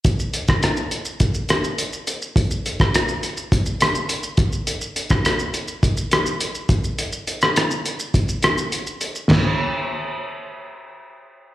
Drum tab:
CC |----------------|----------------|----------------|----------------|
HH |x-x-x-x-x-x-x-x-|x-x-x-x-x-x-x-x-|x-x-x-x-x-x-x-x-|x-x-x-x-x-x-x-x-|
SH |xxxxxxxxxxxxxxxx|xxxxxxxxxxxxxxxx|xxxxxxxxxxxxxxxx|xxxxxxxxxxxxxxxx|
SD |---rr-----r-----|---rr-----r-----|---rr-----r-----|---rr-----r-----|
FT |----------------|----------------|----------------|----------------|
BD |o--o----o-------|o--o----o-----o-|---o----o-----o-|--------o-------|

CC |x---------------|
HH |----------------|
SH |----------------|
SD |o---------------|
FT |o---------------|
BD |----------------|